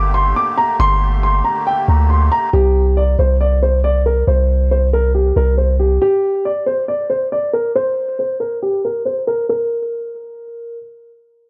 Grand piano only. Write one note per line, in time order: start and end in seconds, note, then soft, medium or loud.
0.14 0.31 C6 medium
0.36 0.53 D6 medium
0.58 0.74 A#5 medium
0.80 1.21 C6 loud
1.23 1.40 C6 medium
1.44 1.61 A#5 medium
1.67 1.83 G5 medium
1.89 2.05 A#5 medium
2.10 2.26 C6 medium
2.32 2.48 A#5 medium
2.53 2.94 G4 loud
2.97 3.13 D5 medium
3.19 3.35 C5 medium
3.41 3.57 D5 medium
3.63 3.79 C5 medium
3.84 4.01 D5 medium
4.06 4.22 A#4 medium
4.28 4.68 C5 medium
4.71 4.88 C5 medium
4.93 5.10 A#4 medium
5.15 5.31 G4 medium
5.37 5.53 A#4 medium
5.58 5.74 C5 medium
5.80 5.96 G4 medium
6.02 6.42 G4 loud
6.45 6.62 D5 medium
6.66 6.83 C5 medium
6.88 7.05 D5 medium
7.10 7.26 C5 medium
7.32 7.48 D5 medium
7.53 7.70 A#4 medium
7.75 8.16 C5 loud
8.19 8.35 C5 medium
8.40 8.57 A#4 medium
8.62 8.79 G4 medium
8.85 9.01 A#4 medium
9.05 9.22 C5 medium
9.27 9.44 A#4 medium
9.49 10.76 A#4 medium